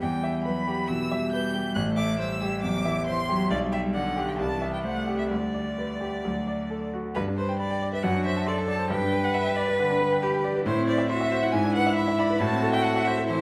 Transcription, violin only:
0, 0, Header, 1, 2, 480
1, 0, Start_track
1, 0, Key_signature, 1, "major"
1, 0, Tempo, 436047
1, 26, Time_signature, 4, 2, 24, 8
1, 4827, Tempo, 461894
1, 7707, Tempo, 436364
1, 14586, End_track
2, 0, Start_track
2, 0, Title_t, "Violin"
2, 0, Program_c, 0, 40
2, 8, Note_on_c, 0, 79, 109
2, 458, Note_off_c, 0, 79, 0
2, 481, Note_on_c, 0, 83, 109
2, 966, Note_on_c, 0, 88, 119
2, 983, Note_off_c, 0, 83, 0
2, 1445, Note_off_c, 0, 88, 0
2, 1452, Note_on_c, 0, 91, 117
2, 1921, Note_off_c, 0, 91, 0
2, 1925, Note_on_c, 0, 90, 121
2, 2013, Note_off_c, 0, 90, 0
2, 2163, Note_on_c, 0, 86, 115
2, 2405, Note_off_c, 0, 86, 0
2, 2413, Note_on_c, 0, 88, 114
2, 2878, Note_off_c, 0, 88, 0
2, 2885, Note_on_c, 0, 86, 115
2, 3362, Note_off_c, 0, 86, 0
2, 3369, Note_on_c, 0, 84, 127
2, 3845, Note_off_c, 0, 84, 0
2, 3854, Note_on_c, 0, 74, 121
2, 3942, Note_off_c, 0, 74, 0
2, 4098, Note_on_c, 0, 76, 103
2, 4186, Note_off_c, 0, 76, 0
2, 4334, Note_on_c, 0, 78, 108
2, 4717, Note_on_c, 0, 79, 90
2, 4734, Note_off_c, 0, 78, 0
2, 4816, Note_off_c, 0, 79, 0
2, 4823, Note_on_c, 0, 81, 102
2, 5171, Note_off_c, 0, 81, 0
2, 5185, Note_on_c, 0, 79, 90
2, 5282, Note_off_c, 0, 79, 0
2, 5288, Note_on_c, 0, 78, 103
2, 5645, Note_off_c, 0, 78, 0
2, 5660, Note_on_c, 0, 76, 90
2, 5762, Note_off_c, 0, 76, 0
2, 5768, Note_on_c, 0, 74, 98
2, 7435, Note_off_c, 0, 74, 0
2, 7697, Note_on_c, 0, 71, 107
2, 7784, Note_off_c, 0, 71, 0
2, 7942, Note_on_c, 0, 72, 103
2, 8178, Note_off_c, 0, 72, 0
2, 8185, Note_on_c, 0, 74, 106
2, 8544, Note_off_c, 0, 74, 0
2, 8561, Note_on_c, 0, 76, 99
2, 8664, Note_on_c, 0, 78, 107
2, 8681, Note_off_c, 0, 76, 0
2, 8908, Note_off_c, 0, 78, 0
2, 8915, Note_on_c, 0, 76, 112
2, 9152, Note_off_c, 0, 76, 0
2, 9158, Note_on_c, 0, 74, 105
2, 9246, Note_off_c, 0, 74, 0
2, 9400, Note_on_c, 0, 81, 101
2, 9622, Note_off_c, 0, 81, 0
2, 9628, Note_on_c, 0, 79, 115
2, 10001, Note_on_c, 0, 78, 116
2, 10017, Note_off_c, 0, 79, 0
2, 10109, Note_on_c, 0, 76, 116
2, 10125, Note_off_c, 0, 78, 0
2, 10344, Note_on_c, 0, 74, 109
2, 10361, Note_off_c, 0, 76, 0
2, 10585, Note_off_c, 0, 74, 0
2, 10592, Note_on_c, 0, 71, 114
2, 11297, Note_off_c, 0, 71, 0
2, 11558, Note_on_c, 0, 72, 117
2, 11781, Note_off_c, 0, 72, 0
2, 11792, Note_on_c, 0, 74, 111
2, 12029, Note_off_c, 0, 74, 0
2, 12042, Note_on_c, 0, 76, 117
2, 12405, Note_on_c, 0, 78, 112
2, 12422, Note_off_c, 0, 76, 0
2, 12510, Note_on_c, 0, 80, 127
2, 12527, Note_off_c, 0, 78, 0
2, 12751, Note_off_c, 0, 80, 0
2, 12758, Note_on_c, 0, 78, 126
2, 12984, Note_off_c, 0, 78, 0
2, 12991, Note_on_c, 0, 76, 119
2, 13241, Note_on_c, 0, 83, 114
2, 13257, Note_off_c, 0, 76, 0
2, 13466, Note_on_c, 0, 81, 127
2, 13482, Note_off_c, 0, 83, 0
2, 13826, Note_off_c, 0, 81, 0
2, 13832, Note_on_c, 0, 79, 124
2, 13941, Note_on_c, 0, 78, 122
2, 13958, Note_off_c, 0, 79, 0
2, 14183, Note_on_c, 0, 76, 124
2, 14200, Note_off_c, 0, 78, 0
2, 14422, Note_off_c, 0, 76, 0
2, 14428, Note_on_c, 0, 72, 120
2, 14586, Note_off_c, 0, 72, 0
2, 14586, End_track
0, 0, End_of_file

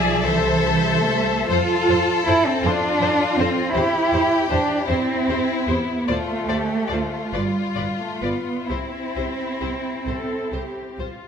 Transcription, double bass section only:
0, 0, Header, 1, 2, 480
1, 0, Start_track
1, 0, Key_signature, 0, "major"
1, 0, Tempo, 782269
1, 390, Tempo, 853485
1, 869, Time_signature, 6, 3, 24, 8
1, 870, Tempo, 753769
1, 2790, Tempo, 801068
1, 4230, Tempo, 864553
1, 4710, Tempo, 921659
1, 6536, End_track
2, 0, Start_track
2, 0, Title_t, "Double bass section"
2, 0, Program_c, 0, 48
2, 0, Note_on_c, 0, 35, 65
2, 128, Note_off_c, 0, 35, 0
2, 145, Note_on_c, 0, 36, 68
2, 867, Note_on_c, 0, 41, 66
2, 870, Note_off_c, 0, 36, 0
2, 918, Note_off_c, 0, 41, 0
2, 1120, Note_on_c, 0, 41, 57
2, 1171, Note_off_c, 0, 41, 0
2, 1359, Note_on_c, 0, 41, 59
2, 1410, Note_off_c, 0, 41, 0
2, 1597, Note_on_c, 0, 41, 62
2, 1648, Note_off_c, 0, 41, 0
2, 1834, Note_on_c, 0, 41, 53
2, 1885, Note_off_c, 0, 41, 0
2, 2073, Note_on_c, 0, 41, 52
2, 2124, Note_off_c, 0, 41, 0
2, 2309, Note_on_c, 0, 40, 59
2, 2360, Note_off_c, 0, 40, 0
2, 2548, Note_on_c, 0, 40, 53
2, 2599, Note_off_c, 0, 40, 0
2, 2789, Note_on_c, 0, 40, 57
2, 2837, Note_off_c, 0, 40, 0
2, 3021, Note_on_c, 0, 40, 56
2, 3069, Note_off_c, 0, 40, 0
2, 3259, Note_on_c, 0, 40, 49
2, 3307, Note_off_c, 0, 40, 0
2, 3492, Note_on_c, 0, 40, 47
2, 3540, Note_off_c, 0, 40, 0
2, 3735, Note_on_c, 0, 38, 52
2, 3783, Note_off_c, 0, 38, 0
2, 3972, Note_on_c, 0, 38, 44
2, 4020, Note_off_c, 0, 38, 0
2, 4225, Note_on_c, 0, 38, 44
2, 4270, Note_off_c, 0, 38, 0
2, 4460, Note_on_c, 0, 31, 48
2, 4504, Note_off_c, 0, 31, 0
2, 4705, Note_on_c, 0, 31, 42
2, 4747, Note_off_c, 0, 31, 0
2, 4943, Note_on_c, 0, 31, 38
2, 4985, Note_off_c, 0, 31, 0
2, 5187, Note_on_c, 0, 36, 39
2, 5229, Note_off_c, 0, 36, 0
2, 5436, Note_on_c, 0, 36, 38
2, 5478, Note_off_c, 0, 36, 0
2, 5669, Note_on_c, 0, 36, 36
2, 5711, Note_off_c, 0, 36, 0
2, 5906, Note_on_c, 0, 36, 39
2, 5947, Note_off_c, 0, 36, 0
2, 6144, Note_on_c, 0, 36, 32
2, 6185, Note_off_c, 0, 36, 0
2, 6385, Note_on_c, 0, 36, 33
2, 6426, Note_off_c, 0, 36, 0
2, 6536, End_track
0, 0, End_of_file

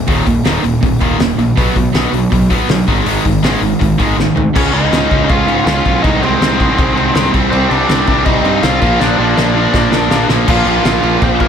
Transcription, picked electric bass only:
0, 0, Header, 1, 2, 480
1, 0, Start_track
1, 0, Tempo, 371287
1, 103, Time_signature, 4, 2, 24, 8
1, 14844, End_track
2, 0, Start_track
2, 0, Title_t, "Picked electric bass"
2, 0, Program_c, 0, 34
2, 107, Note_on_c, 0, 27, 99
2, 259, Note_off_c, 0, 27, 0
2, 344, Note_on_c, 0, 27, 89
2, 497, Note_off_c, 0, 27, 0
2, 580, Note_on_c, 0, 27, 79
2, 734, Note_off_c, 0, 27, 0
2, 826, Note_on_c, 0, 27, 93
2, 979, Note_off_c, 0, 27, 0
2, 1066, Note_on_c, 0, 27, 83
2, 1219, Note_off_c, 0, 27, 0
2, 1305, Note_on_c, 0, 27, 82
2, 1459, Note_off_c, 0, 27, 0
2, 1546, Note_on_c, 0, 27, 81
2, 1700, Note_off_c, 0, 27, 0
2, 1786, Note_on_c, 0, 34, 86
2, 1940, Note_off_c, 0, 34, 0
2, 2033, Note_on_c, 0, 35, 92
2, 2185, Note_off_c, 0, 35, 0
2, 2273, Note_on_c, 0, 35, 81
2, 2425, Note_off_c, 0, 35, 0
2, 2506, Note_on_c, 0, 35, 83
2, 2661, Note_off_c, 0, 35, 0
2, 2745, Note_on_c, 0, 35, 90
2, 2901, Note_off_c, 0, 35, 0
2, 3000, Note_on_c, 0, 35, 87
2, 3304, Note_off_c, 0, 35, 0
2, 3474, Note_on_c, 0, 35, 80
2, 3627, Note_off_c, 0, 35, 0
2, 3719, Note_on_c, 0, 32, 89
2, 3871, Note_off_c, 0, 32, 0
2, 3948, Note_on_c, 0, 32, 101
2, 4104, Note_off_c, 0, 32, 0
2, 4205, Note_on_c, 0, 32, 93
2, 4355, Note_off_c, 0, 32, 0
2, 4427, Note_on_c, 0, 32, 88
2, 4583, Note_off_c, 0, 32, 0
2, 4670, Note_on_c, 0, 32, 91
2, 4825, Note_off_c, 0, 32, 0
2, 4928, Note_on_c, 0, 32, 88
2, 5078, Note_off_c, 0, 32, 0
2, 5166, Note_on_c, 0, 32, 84
2, 5316, Note_off_c, 0, 32, 0
2, 5387, Note_on_c, 0, 32, 79
2, 5544, Note_off_c, 0, 32, 0
2, 5632, Note_on_c, 0, 38, 79
2, 5787, Note_off_c, 0, 38, 0
2, 5893, Note_on_c, 0, 37, 96
2, 6070, Note_off_c, 0, 37, 0
2, 6118, Note_on_c, 0, 37, 89
2, 6301, Note_off_c, 0, 37, 0
2, 6356, Note_on_c, 0, 37, 80
2, 6540, Note_off_c, 0, 37, 0
2, 6604, Note_on_c, 0, 37, 93
2, 6785, Note_off_c, 0, 37, 0
2, 6844, Note_on_c, 0, 37, 93
2, 7025, Note_off_c, 0, 37, 0
2, 7070, Note_on_c, 0, 44, 81
2, 7256, Note_off_c, 0, 44, 0
2, 7316, Note_on_c, 0, 37, 88
2, 7500, Note_off_c, 0, 37, 0
2, 7569, Note_on_c, 0, 35, 84
2, 7748, Note_off_c, 0, 35, 0
2, 7809, Note_on_c, 0, 36, 94
2, 7988, Note_off_c, 0, 36, 0
2, 8028, Note_on_c, 0, 36, 89
2, 8215, Note_off_c, 0, 36, 0
2, 8276, Note_on_c, 0, 36, 90
2, 8641, Note_off_c, 0, 36, 0
2, 8767, Note_on_c, 0, 36, 95
2, 8946, Note_off_c, 0, 36, 0
2, 9003, Note_on_c, 0, 36, 80
2, 9184, Note_off_c, 0, 36, 0
2, 9234, Note_on_c, 0, 36, 86
2, 9418, Note_off_c, 0, 36, 0
2, 9489, Note_on_c, 0, 36, 91
2, 9667, Note_off_c, 0, 36, 0
2, 9720, Note_on_c, 0, 36, 98
2, 9902, Note_off_c, 0, 36, 0
2, 9962, Note_on_c, 0, 36, 93
2, 10143, Note_off_c, 0, 36, 0
2, 10202, Note_on_c, 0, 36, 94
2, 10383, Note_off_c, 0, 36, 0
2, 10440, Note_on_c, 0, 36, 89
2, 10621, Note_off_c, 0, 36, 0
2, 10675, Note_on_c, 0, 36, 93
2, 10858, Note_off_c, 0, 36, 0
2, 10913, Note_on_c, 0, 43, 83
2, 11097, Note_off_c, 0, 43, 0
2, 11159, Note_on_c, 0, 36, 88
2, 11340, Note_off_c, 0, 36, 0
2, 11400, Note_on_c, 0, 34, 89
2, 11580, Note_off_c, 0, 34, 0
2, 11637, Note_on_c, 0, 34, 100
2, 11818, Note_off_c, 0, 34, 0
2, 11872, Note_on_c, 0, 34, 82
2, 12055, Note_off_c, 0, 34, 0
2, 12120, Note_on_c, 0, 34, 87
2, 12481, Note_off_c, 0, 34, 0
2, 12591, Note_on_c, 0, 34, 83
2, 12774, Note_off_c, 0, 34, 0
2, 12840, Note_on_c, 0, 34, 83
2, 13019, Note_off_c, 0, 34, 0
2, 13070, Note_on_c, 0, 34, 84
2, 13252, Note_off_c, 0, 34, 0
2, 13304, Note_on_c, 0, 34, 85
2, 13488, Note_off_c, 0, 34, 0
2, 13547, Note_on_c, 0, 34, 105
2, 13708, Note_off_c, 0, 34, 0
2, 13780, Note_on_c, 0, 34, 91
2, 13943, Note_off_c, 0, 34, 0
2, 14025, Note_on_c, 0, 34, 89
2, 14186, Note_off_c, 0, 34, 0
2, 14256, Note_on_c, 0, 34, 93
2, 14419, Note_off_c, 0, 34, 0
2, 14501, Note_on_c, 0, 34, 95
2, 14663, Note_off_c, 0, 34, 0
2, 14741, Note_on_c, 0, 34, 87
2, 14844, Note_off_c, 0, 34, 0
2, 14844, End_track
0, 0, End_of_file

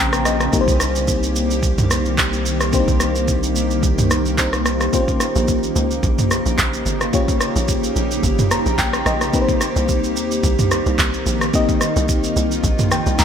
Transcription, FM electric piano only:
0, 0, Header, 1, 2, 480
1, 0, Start_track
1, 0, Tempo, 550459
1, 460, Time_signature, 4, 2, 24, 8
1, 11551, End_track
2, 0, Start_track
2, 0, Title_t, "FM electric piano"
2, 0, Program_c, 0, 5
2, 0, Control_c, 0, 64, 127
2, 0, Note_on_c, 0, 58, 76
2, 0, Note_on_c, 0, 60, 53
2, 0, Note_on_c, 0, 61, 71
2, 0, Note_on_c, 0, 65, 66
2, 0, Note_on_c, 0, 67, 69
2, 0, Note_on_c, 0, 72, 83
2, 0, Note_on_c, 0, 79, 73
2, 0, Note_on_c, 0, 82, 75
2, 206, Note_off_c, 0, 79, 0
2, 225, Note_on_c, 0, 75, 69
2, 423, Note_off_c, 0, 58, 0
2, 428, Note_off_c, 0, 65, 0
2, 430, Note_off_c, 0, 67, 0
2, 432, Note_off_c, 0, 72, 0
2, 446, Note_off_c, 0, 75, 0
2, 454, Note_off_c, 0, 61, 0
2, 456, Note_on_c, 0, 58, 75
2, 460, Note_off_c, 0, 60, 0
2, 460, Note_on_c, 0, 60, 68
2, 465, Note_on_c, 0, 63, 69
2, 469, Note_on_c, 0, 67, 68
2, 470, Control_c, 0, 64, 0
2, 472, Note_off_c, 0, 82, 0
2, 473, Note_on_c, 0, 70, 68
2, 529, Note_off_c, 0, 70, 0
2, 530, Note_on_c, 0, 72, 86
2, 645, Control_c, 0, 64, 127
2, 2343, Note_off_c, 0, 58, 0
2, 2345, Note_off_c, 0, 60, 0
2, 2348, Note_off_c, 0, 63, 0
2, 2350, Note_off_c, 0, 67, 0
2, 2376, Note_on_c, 0, 58, 74
2, 2380, Note_off_c, 0, 72, 0
2, 2380, Note_on_c, 0, 60, 68
2, 2384, Note_on_c, 0, 62, 54
2, 2389, Note_on_c, 0, 67, 70
2, 2393, Note_on_c, 0, 72, 83
2, 2441, Note_on_c, 0, 63, 68
2, 2445, Note_off_c, 0, 62, 0
2, 3789, Note_off_c, 0, 58, 0
2, 3792, Note_off_c, 0, 60, 0
2, 3796, Note_off_c, 0, 67, 0
2, 3798, Note_off_c, 0, 72, 0
2, 3814, Note_off_c, 0, 63, 0
2, 3820, Note_on_c, 0, 58, 59
2, 3823, Note_on_c, 0, 60, 52
2, 3825, Note_on_c, 0, 63, 51
2, 3826, Note_on_c, 0, 67, 52
2, 3829, Note_on_c, 0, 72, 63
2, 4285, Note_off_c, 0, 58, 0
2, 4290, Note_off_c, 0, 60, 0
2, 4296, Note_on_c, 0, 58, 78
2, 4298, Note_off_c, 0, 67, 0
2, 4300, Note_on_c, 0, 60, 55
2, 4302, Note_off_c, 0, 72, 0
2, 4303, Note_off_c, 0, 63, 0
2, 4304, Note_on_c, 0, 65, 68
2, 4309, Note_on_c, 0, 67, 69
2, 4313, Control_c, 0, 64, 0
2, 4313, Note_on_c, 0, 72, 85
2, 4357, Note_on_c, 0, 61, 68
2, 4363, Note_off_c, 0, 60, 0
2, 4441, Control_c, 0, 64, 127
2, 6183, Note_off_c, 0, 58, 0
2, 6187, Note_off_c, 0, 65, 0
2, 6190, Note_off_c, 0, 67, 0
2, 6192, Note_off_c, 0, 72, 0
2, 6210, Note_off_c, 0, 61, 0
2, 6215, Note_on_c, 0, 58, 76
2, 6220, Note_on_c, 0, 61, 69
2, 6224, Note_on_c, 0, 65, 71
2, 6229, Note_on_c, 0, 67, 70
2, 6233, Note_on_c, 0, 73, 84
2, 7425, Note_on_c, 0, 82, 69
2, 7646, Note_off_c, 0, 82, 0
2, 7665, Note_on_c, 0, 79, 76
2, 7886, Note_off_c, 0, 79, 0
2, 7905, Note_on_c, 0, 75, 68
2, 8103, Note_off_c, 0, 58, 0
2, 8105, Note_off_c, 0, 61, 0
2, 8107, Note_off_c, 0, 65, 0
2, 8110, Note_off_c, 0, 67, 0
2, 8112, Note_off_c, 0, 73, 0
2, 8126, Note_off_c, 0, 75, 0
2, 8137, Note_on_c, 0, 58, 79
2, 8142, Note_on_c, 0, 60, 71
2, 8146, Note_on_c, 0, 63, 70
2, 8150, Note_on_c, 0, 67, 69
2, 8153, Control_c, 0, 64, 0
2, 8155, Note_on_c, 0, 71, 67
2, 8210, Note_off_c, 0, 71, 0
2, 8211, Note_on_c, 0, 72, 80
2, 8317, Control_c, 0, 64, 127
2, 10024, Note_off_c, 0, 58, 0
2, 10026, Note_off_c, 0, 60, 0
2, 10028, Note_off_c, 0, 63, 0
2, 10030, Note_off_c, 0, 67, 0
2, 10058, Note_on_c, 0, 58, 77
2, 10061, Note_off_c, 0, 72, 0
2, 10061, Note_on_c, 0, 60, 70
2, 10066, Note_on_c, 0, 63, 73
2, 10071, Note_on_c, 0, 67, 71
2, 10075, Note_on_c, 0, 75, 88
2, 11265, Note_on_c, 0, 79, 71
2, 11486, Note_off_c, 0, 79, 0
2, 11506, Note_on_c, 0, 82, 77
2, 11551, Note_off_c, 0, 58, 0
2, 11551, Note_off_c, 0, 60, 0
2, 11551, Note_off_c, 0, 63, 0
2, 11551, Note_off_c, 0, 67, 0
2, 11551, Note_off_c, 0, 75, 0
2, 11551, Note_off_c, 0, 82, 0
2, 11551, End_track
0, 0, End_of_file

